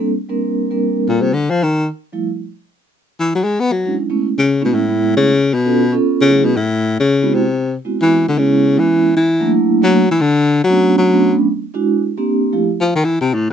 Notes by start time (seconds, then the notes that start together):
0.29 G3 A#3 C4 D4 A#4
0.71 G3 A#3 C4 D4 A#4
1.07 A#2 G3 A#3 F4 A4
1.22 C3
1.33 D3
1.50 F3
1.63 D#3
2.13 F3 G3 A3 E4
3.20 E3
3.35 F#3
3.44 G#3
3.60 B3
3.72 F#3
3.85 F#3 G#3 C#4 D4 E4
4.10 G#3 A3 B3 C#4 E4
4.38 C#3
4.61 B2 G#3 A3 B3 C#4 E4
4.74 A2
4.88 G#3 A3 B3 E4
5.16 C#3
5.54 B2
5.65 B3 C#4 F4 A4
5.92 B3 C#4 F4 A4
6.21 C#3
6.29 F#3 A3 C#4 E4 G#4
6.45 B2
6.56 A2
7.00 C#3
7.22 G#3 B3 C4 E4 F#4
7.34 C3
7.85 G#3 B3 C4 E4 F#4
8.02 E3
8.28 D3
8.37 C#3 G#3 B3 C#4 E4
8.79 E3
9.16 E3
9.40 F#3 A3 A#3 D4 E4
9.82 F#3 A3 A#3 D4 F#4
10.11 E3
10.21 D3
10.64 F#3
10.69 F#3 A3 B3 C#4 D4
10.98 F#3
11.11 F#3 A3 B3 C#4 D4
11.74 G#3 D4 E4 F#4
12.17 A#3 C4 D4 G4
12.52 F3 A3 E4 G4
12.81 F3
12.96 D#3
13.04 E3
13.21 C3
13.34 A2